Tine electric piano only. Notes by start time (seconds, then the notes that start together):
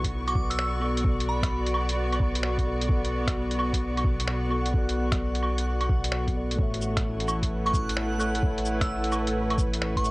Already playing: B3 F#4 A4 D5
0.80 B3 F#4 A4
0.84 D5
1.01 B3 F#4
1.06 A4 D5
2.64 B3 F#4 A4
2.68 D5
2.85 B3 F#4
2.91 A4 D5
4.49 B3 F#4 A4
4.53 D5
4.70 B3 F#4
4.75 A4 D5
6.33 B3 F#4 A4 D5
6.55 A3 A4
6.63 E5
8.18 A3 A4 C#5 E5
8.38 A3 A4
8.43 C#5 E5
10.02 A3 A4 C#5
10.06 E5